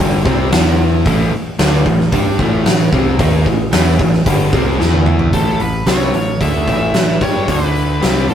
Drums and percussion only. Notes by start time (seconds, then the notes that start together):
0.26 kick
0.52 snare, open hi-hat
1.06 kick, open hi-hat
1.59 snare, open hi-hat
1.86 kick
2.00 snare
2.12 kick, open hi-hat
2.39 kick
2.66 snare, open hi-hat
2.93 kick
3.19 kick, open hi-hat
3.46 kick
3.72 snare, open hi-hat
3.99 kick
4.13 snare
4.26 kick, open hi-hat
4.53 kick
4.80 snare
4.93 high tom
5.06 mid tom
5.19 floor tom
5.33 kick, open hi-hat
5.60 open hi-hat
5.86 snare, open hi-hat
6.14 open hi-hat
6.41 kick, open hi-hat
6.67 kick, open hi-hat
6.94 snare, open hi-hat
7.09 snare
7.21 kick, open hi-hat
7.48 kick, open hi-hat
7.75 open hi-hat
8.02 snare, open hi-hat
8.29 open hi-hat